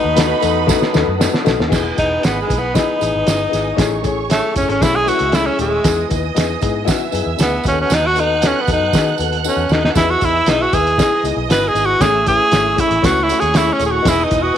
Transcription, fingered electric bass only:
0.04 0.32 D#2 medium
0.43 0.71 E2 medium
0.96 1.05 D#2 medium
1.08 1.26 F#2 medium
1.47 1.56 B1 medium
1.59 1.69 D#2 loud
1.72 1.90 E1 medium
1.98 2.17 E1 medium
2.25 2.43 G#1 medium
2.50 2.78 B1 medium
3.02 3.11 A1 medium
3.15 3.24 G#1 medium
3.27 3.46 G1 medium
3.53 3.72 G#1 medium
3.78 4.40 A1 loud
4.56 4.65 F#1 medium
4.69 4.78 G#1 medium
4.81 5.10 B1 medium
5.20 5.48 C#2 medium
5.59 5.78 D#1 medium
5.85 6.03 E2 loud
6.11 6.30 D#2 medium
6.36 6.55 E2 medium
6.62 6.90 G#2 medium
7.13 7.23 F#2 medium
7.26 7.36 E2 medium
7.39 7.58 D2 medium
7.65 7.84 D#2 loud
7.90 8.52 D#2 loud
8.68 8.77 E2 medium
8.80 8.90 F#2 medium
8.93 9.12 D#3 medium
9.19 9.47 D#2 medium
9.57 9.66 E2 medium
9.70 9.89 D#2 medium
9.96 10.14 E2 loud
10.22 10.40 E2 medium
10.46 10.65 B1 medium
10.73 11.01 D#2 medium
11.24 11.33 C#2 medium
11.36 11.46 B1 medium
11.49 11.68 G1 medium
11.75 11.94 G#1 medium
12.01 12.38 A1 loud
12.52 12.80 G#1 medium
12.91 13.00 A1 medium
13.03 13.31 C#2 medium
13.42 13.70 D#2 medium
13.80 13.99 D#1 medium
14.06 14.24 E1 loud
14.31 14.50 E1 medium

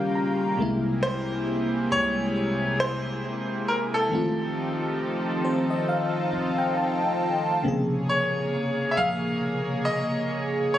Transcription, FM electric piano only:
0.00 0.58 D#3 medium
0.00 0.59 G3 medium
0.00 0.59 C#4 medium
0.00 0.60 G4 medium
0.00 0.12 F5 medium
0.15 0.56 A#5 medium
0.57 4.07 C3 medium
0.57 4.08 G#3 medium
0.57 4.08 A#3 medium
0.62 4.09 E4 medium
4.10 7.60 D#3 medium
4.10 7.60 A3 medium
4.10 7.61 C4 medium
4.15 7.62 F4 medium
5.45 5.68 C5 medium
5.70 5.87 D#5 medium
5.89 6.54 F5 medium
6.58 6.75 G5 medium
6.77 7.61 A5 medium
7.63 10.78 C3 medium
7.63 10.78 C#3 medium
7.63 10.78 A#3 medium
7.68 10.78 G#4 medium

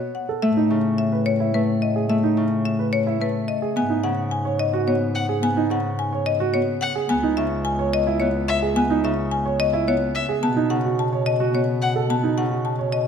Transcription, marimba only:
0.15 0.33 F#5 soft
0.42 0.61 E5 medium
0.98 1.17 E5 medium
1.26 1.44 C#5 medium
1.54 1.72 B4 medium
1.82 2.00 D#5 medium
2.10 2.28 E5 medium
2.65 2.83 E5 medium
2.93 3.11 C#5 medium
3.22 3.39 B4 medium
3.48 3.67 D#5 medium
3.77 3.95 G#5 medium
4.04 4.22 F#5 medium
4.31 4.50 G#5 medium
4.59 4.78 D#5 medium
4.88 5.06 C#5 medium
5.16 5.34 F#5 medium
5.43 5.61 G#5 medium
5.71 5.89 F#5 medium
5.99 6.17 G#5 medium
6.26 6.44 D#5 medium
6.54 6.72 C#5 medium
6.81 7.00 F#5 medium
7.09 7.28 G#5 medium
7.37 7.55 E5 medium
7.65 7.83 G#5 medium
7.93 8.11 D#5 medium
8.20 8.38 C#5 medium
8.48 8.67 E5 medium
8.76 8.94 G#5 medium
9.05 9.22 E5 medium
9.31 9.50 G#5 medium
9.60 9.78 D#5 medium
9.88 10.06 C#5 medium
10.16 10.34 E5 medium
10.43 10.61 A5 medium
10.70 10.89 F#5 medium
10.99 11.17 A5 medium
11.26 11.44 D#5 medium
11.55 11.72 C#5 medium
11.82 12.00 F#5 medium
12.10 12.28 A5 medium
12.38 12.56 F#5 medium
12.65 12.83 A5 medium
12.92 13.08 D#5 medium

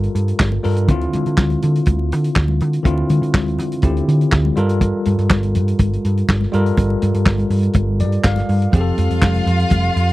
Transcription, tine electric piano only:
0.00 0.59 G3 medium
0.00 0.60 F4 medium
0.00 0.60 A4 medium
0.00 0.61 A#4 medium
0.63 0.88 G3 medium
0.63 0.88 F4 soft
0.63 0.88 A4 soft
0.63 0.89 A#4 medium
0.88 2.80 D3 medium
0.88 2.81 C4 medium
0.88 2.82 E4 medium
0.88 2.82 F4 medium
2.83 3.80 D3 medium
2.83 3.81 C4 medium
2.83 3.81 E4 medium
2.83 3.82 F4 medium
3.83 4.57 D3 medium
3.83 4.57 C4 medium
3.83 4.57 E4 medium
3.83 4.57 G4 medium
4.56 6.48 G3 medium
4.56 6.49 F4 medium
4.56 6.49 A4 medium
4.56 6.50 A#4 medium
6.52 8.45 G3 medium
6.52 8.45 F4 medium
6.52 8.46 A4 medium
6.52 8.46 A#4 medium
8.01 8.23 D5 medium
8.24 8.70 F5 medium
8.72 10.13 F3 medium
8.72 10.13 C4 medium
8.72 10.13 G4 medium
8.72 8.80 G#4 medium
8.81 10.13 A4 medium

